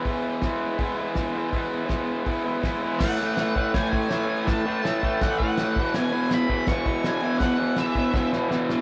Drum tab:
CC |--------|--------|x-x-x-x-|x-x-x-x-|
HH |o-o-o-o-|o-o-o-o-|--------|--------|
SD |--o---o-|--o---o-|o-o-o-o-|o-o-o-o-|
BD |o-o-o-o-|o-o-o-o-|o--ooo--|o--ooo-o|

CC |x-x-x-x-|x-x-----|
HH |--------|--------|
SD |o-o-o-o-|o-o-oooo|
BD |---ooo--|o--oo---|